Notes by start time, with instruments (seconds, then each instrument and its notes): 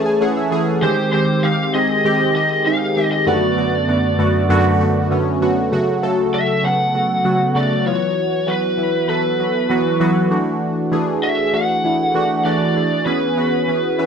Already playing: synth keys E3 A3 C#4 G#4 B4 A5
0.06 synth keys G#5
0.21 synth keys E3 A3 C#4 G#4 F#5
0.37 synth keys E5
0.51 synth keys E3 A3 C#4 G#4
0.82 synth keys D#3 G#3 C4 G4, lead electric guitar C5
1.13 synth keys D#3 G#3 C4 G4, lead electric guitar C5
1.43 synth keys D#3 G#3 C4 G4, lead electric guitar F5
1.74 synth keys D#3 G#3 C4 G#4, lead electric guitar D#5
2.04 synth keys D#3 G#3 C4 G4
2.35 synth keys D#3 G#3 C4 G4, lead electric guitar D#5
2.66 synth keys D#3 G#3 C4 D#4, lead electric guitar F5
2.96 synth keys D#3 G#3 C4 G4
3.12 lead electric guitar D#5
3.26 synth keys F#2 D3 A3 B3 F#4, lead electric guitar D5
3.57 synth keys F#2 D3 A3 B3 F#4
3.88 synth keys F#2 D3 A3 B3 F#4
4.18 synth keys F#2 D3 A3 B3 F#4
4.49 synth keys F#2 D3 A3 B3 F#4
4.80 synth keys F#2 D3 A3 B3 F#4
5.10 synth keys F#2 D3 A3 B3 C#4
5.41 synth keys F#2 D3 A3 B3 F#4
5.72 synth keys C#3 F#3 A3 F#4
6.02 synth keys C#3 F#3 A3 A4
6.33 synth keys C#3 F#3 A3 F#4, lead electric guitar E5
6.63 synth keys C#3 F#3 A3 B3, lead electric guitar F#5
6.94 synth keys C#3 F#3 A3 F#4
7.24 synth keys C#3 F#3 A3 F#4
7.55 synth keys C#3 F#3 A3 F#4, lead electric guitar D5
7.86 synth keys E3 F#3 B3 F4, lead electric guitar C#5
7.93 synth keys F#4
8.47 synth keys E3 F#3 B3 F#4, lead electric guitar B4
8.77 synth keys E3 F#3 B3 E4
9.08 synth keys E3 F#3 B3 A4, lead electric guitar B4
9.39 synth keys E3 F#3 B3 F#4
9.69 synth keys E3 F#3 B3 F#4
10.00 synth keys E3 F#3 B3 F#4
10.30 synth keys E3 A3 D4 F#4
10.92 synth keys E3 A3 D4 G#4
11.22 synth keys E3 A3 D4 F#4, lead electric guitar E5
11.53 synth keys E3 A3 D4 F#4, lead electric guitar F#5
11.84 synth keys E3 A3 D4 E4
12.14 synth keys E3 A3 D4 F#4
12.45 synth keys E3 A3 D4 F#4, lead electric guitar D5
12.76 synth keys E3 A3 D4 G#4
13.06 synth keys E3 B3 C#4 G#4, lead electric guitar B4
13.37 synth keys E3 B3 C#4 F#4
13.68 synth keys E3 B3 C#4 G#4
13.98 synth keys E3 B3 C#4 B4 E5